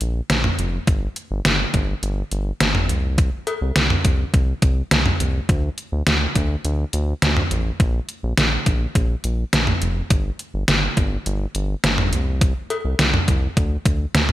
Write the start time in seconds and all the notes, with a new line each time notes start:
0.01 A#1, closed hi-hat
0.30 A#1, snare, closed hi-hat
0.44 mid tom
0.59 F1, closed hi-hat
0.87 G1, kick, closed hi-hat
1.16 closed hi-hat
1.31 G1
1.45 G1, snare, closed hi-hat
1.74 G1, kick, closed hi-hat
2.03 G1, closed hi-hat
2.31 G1, closed hi-hat
2.60 G1, snare, closed hi-hat
2.75 mid tom
2.89 C2, closed hi-hat
3.18 kick, closed hi-hat
3.47 closed hi-hat, cowbell
3.61 C2
3.76 C2, snare, closed hi-hat
3.90 mid tom
4.05 C2, kick, closed hi-hat
4.34 C2, kick, closed hi-hat
4.62 C2, kick, closed hi-hat
4.91 C2, snare, closed hi-hat
5.06 mid tom
5.20 C2, closed hi-hat
5.49 D2, kick, closed hi-hat
5.78 closed hi-hat
5.92 D2
6.07 D2, snare, closed hi-hat
6.35 D2, kick, closed hi-hat
6.65 D2, closed hi-hat
6.93 D2, closed hi-hat
7.22 D2, snare, closed hi-hat
7.37 mid tom
7.51 A1, closed hi-hat
7.80 A#1, kick, closed hi-hat
8.09 closed hi-hat
8.23 A#1
8.38 A#1, snare, closed hi-hat
8.66 A#1, kick, closed hi-hat
8.95 A#1, kick, closed hi-hat
9.24 A#1, closed hi-hat
9.53 A#1, snare, closed hi-hat
9.67 mid tom
9.82 F1, closed hi-hat
10.10 G1, kick, closed hi-hat
10.39 closed hi-hat
10.54 G1
10.68 G1, snare, closed hi-hat
10.97 G1, kick, closed hi-hat
11.26 G1, closed hi-hat
11.55 G1, closed hi-hat
11.84 G1, snare, closed hi-hat
11.98 mid tom
12.13 C2, closed hi-hat
12.41 kick, closed hi-hat
12.70 closed hi-hat, cowbell
12.85 C2
12.99 C2, snare, closed hi-hat
13.14 mid tom
13.28 C2, kick, closed hi-hat
13.57 D2, kick, closed hi-hat
13.86 D2, kick, closed hi-hat
14.14 D2, snare, closed hi-hat
14.29 mid tom